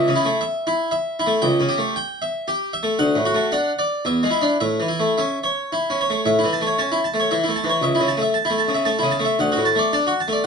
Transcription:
Already playing: E5
0.08 C#3
0.16 E4
0.25 A3
0.41 E5
0.67 E4
0.91 E5
1.20 E4
1.26 A3
1.42 C#2 G5
1.60 C#3
1.69 G4
1.78 A3
1.96 G5
2.22 E5
2.48 G4
2.73 E5
2.83 A3
2.99 D2 F#5
3.15 A2
3.25 F#4
3.35 A3
3.52 D4 F#5
3.79 D5
4.05 E2 E5
4.23 G#3
4.31 E4
4.42 D4
4.60 A2 E5
4.80 E3
4.88 E4
4.99 A3
5.18 C#4 E5
5.44 C#5
5.72 E4
5.90 C#4
6.01 C#5
6.10 A3
6.25 A2 E5
6.39 E4
6.44 E3
6.53 A5
6.61 A3
6.67 C#5
6.78 C#4 A5
6.92 E4
7.04 A5
7.14 A3
7.20 C#5
7.31 E3 E5
7.44 E4
7.48 A3
7.56 A5
7.64 E3
7.69 C#5
7.82 C#2 E5
7.95 E4
8.00 C#3
8.08 A5
8.17 A3
8.22 E5
8.34 A5
8.45 E4
8.50 A3
8.58 A5
8.68 C#3
8.74 E5
8.85 A3 A5
8.99 C#3 E4
9.11 A5
9.19 A3
9.25 E5
9.39 D2 F#5
9.52 F#4
9.57 A2
9.65 A5
9.75 A3 D5
9.93 D4 A5
10.07 F#4
10.20 A5
10.28 A3
10.33 D5

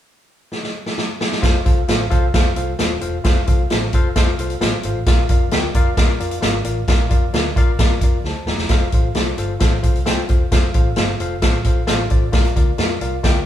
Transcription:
0.52 snare
0.63 snare
0.86 snare
0.98 snare
1.21 snare
1.32 snare
1.42 F1 F4 A4 C5 F5, kick, snare, closed hi-hat
1.65 C2 F4 A4 C5 F5, kick, closed hi-hat
1.88 A1 F4 A4 C5 F5, snare, closed hi-hat
2.10 C2 F4 A4 C5 F5, kick, closed hi-hat
2.34 F2 F4 A4 C5 F5, kick, snare, closed hi-hat
2.56 C2 F4 A4 C5 F5, closed hi-hat
2.79 D#1 F4 A4 C5 F5, snare, closed hi-hat
3.01 E1 F4 A4 C5 F5, closed hi-hat
3.24 F1 F4 A4 C5 F5, kick, snare, closed hi-hat
3.47 C2 F4 A4 C5 F5, kick, closed hi-hat
3.70 A1 F4 A4 C5 F5, snare, closed hi-hat
3.93 F1 F4 A4 C5 F5, kick, closed hi-hat
4.16 F2 F4 A4 C5 F5, kick, snare, closed hi-hat
4.38 C2 F4 A4 C5 F5, closed hi-hat
4.50 closed hi-hat
4.61 A1 F4 A4 C5 F5, snare, closed hi-hat
4.83 G#1 F4 A4 C5 F5, closed hi-hat
4.96 A1
5.06 A#1 A#2 F4 A#4 D5 F5, kick, snare, closed hi-hat
5.29 F2 F4 A#4 D5 F5, kick, closed hi-hat
5.51 D2 F4 A#4 D5 G5, snare, closed hi-hat
5.74 F2 F4 A#4 D5 F5, kick, closed hi-hat
5.97 A#2 F4 A#4 D5 F5, kick, snare, closed hi-hat
6.20 F2 F4 A#4 D5 F5, closed hi-hat
6.31 closed hi-hat
6.41 G#1 F4 A#4 D5 F5, snare, closed hi-hat
6.64 A1 F4 A#4 D5 F5, closed hi-hat
6.87 A#1 A#2 F4 A#4 D5 F5, kick, snare, closed hi-hat
7.09 F2 F4 A#4 D5 F5, kick, closed hi-hat
7.33 D2 F4 A#4 D5 F5, snare, closed hi-hat
7.56 A#1 F4 A#4 D5 F5, kick, closed hi-hat
7.79 A#2 F4 A#4 D5 F5, kick, snare, closed hi-hat
8.01 F2 F4 A#4 D5 F5, kick, closed hi-hat
8.24 D2 C5 A5, snare
8.46 D#1 D5 A#5, snare
8.58 E1, snare
8.69 F1 F4 A4 C5 F5, kick, snare, closed hi-hat
8.92 A1 F4 A4 C5 F5, kick, closed hi-hat
9.14 C2 F4 A4 C5 D5, snare, closed hi-hat
9.38 G1 F4 A4 C5 F5, closed hi-hat
9.60 A1 F4 A4 C5 F5, kick, snare, closed hi-hat
9.82 F4 A4 C5 F5, kick, closed hi-hat
9.94 C2, closed hi-hat
10.06 F4 A4 C5 G5, snare, closed hi-hat
10.28 E1 F4 A4 C5 F5, kick, closed hi-hat
10.52 F1 F4 A4 C5 F5, kick, snare, closed hi-hat
10.74 A1 F4 A4 C5 F5, kick, closed hi-hat
10.96 G1 F4 A4 C5 F5, snare, closed hi-hat
11.20 F1 F4 A4 C5 F5, closed hi-hat
11.42 A1 F4 A4 C5 F5, kick, snare, closed hi-hat
11.64 F4 A4 C5 F5, kick, closed hi-hat
11.77 A#1
11.87 A1 F4 A4 C5 F5, snare, closed hi-hat
12.10 A1 F4 A4 C5 D5, kick, closed hi-hat
12.32 A#1 A#2 F4 A#4 D5 F5, kick, snare, closed hi-hat
12.45 closed hi-hat
12.56 D2 F4 A#4 D5 F5, kick, closed hi-hat
12.78 F2 F4 A#4 D5 F5, snare, closed hi-hat
13.01 C2 F4 A#4 D5 F5, closed hi-hat
13.23 D2 F4 A#4 D5 G5, kick, snare, closed hi-hat

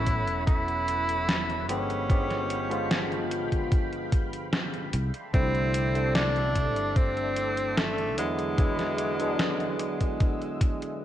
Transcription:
Already playing: A1 F#3 B3 C#4 E4 F#4 A4 C#5 F#5 B5
0.07 kick, closed hi-hat
0.28 E1, closed hi-hat
0.47 E4, kick, closed hi-hat
0.68 closed hi-hat
0.88 closed hi-hat
1.09 closed hi-hat
1.29 snare, closed hi-hat
1.50 closed hi-hat
1.68 G1 D3 F3 G#3 B3 C#4 G4 F5 G5 B5, closed hi-hat
1.90 closed hi-hat
2.09 D3 F3 G#3 B3 G4, kick, closed hi-hat
2.30 snare, closed hi-hat
2.50 closed hi-hat
2.69 D3 F3 G#3 B3 F4, closed hi-hat
2.91 snare, closed hi-hat
3.12 closed hi-hat
3.31 closed hi-hat
3.52 D2, kick, closed hi-hat
3.72 G1, kick, closed hi-hat
3.93 closed hi-hat
4.12 kick, closed hi-hat
4.33 closed hi-hat
4.53 snare, closed hi-hat
4.74 closed hi-hat
4.93 C2 A4 D5 E5 C6, closed hi-hat
5.14 closed hi-hat
5.33 C2 D3 G3 A3 C4 E4, kick, closed hi-hat
5.55 closed hi-hat
5.74 closed hi-hat
5.94 D3 G3 A3 C4 D4, closed hi-hat
6.15 D4, snare, closed hi-hat
6.36 closed hi-hat
6.55 kick, closed hi-hat
6.76 G1, closed hi-hat
6.96 C4, kick, closed hi-hat
7.17 closed hi-hat
7.36 closed hi-hat
7.57 closed hi-hat
7.77 A3, snare, closed hi-hat
7.98 closed hi-hat
8.17 E2 D3 F#3 G#3 B3 E4 G#4 F#5 D6, closed hi-hat
8.39 closed hi-hat
8.58 D3 F#3 G#3 B3 E4, kick, closed hi-hat
8.79 snare, closed hi-hat
8.98 closed hi-hat
9.19 D3 F#3 G#3 B3 D4, closed hi-hat
9.39 snare, closed hi-hat
9.60 closed hi-hat
9.79 E6, closed hi-hat
10.00 kick, closed hi-hat
10.20 E2, kick, closed hi-hat
10.42 closed hi-hat
10.61 kick, closed hi-hat
10.82 closed hi-hat

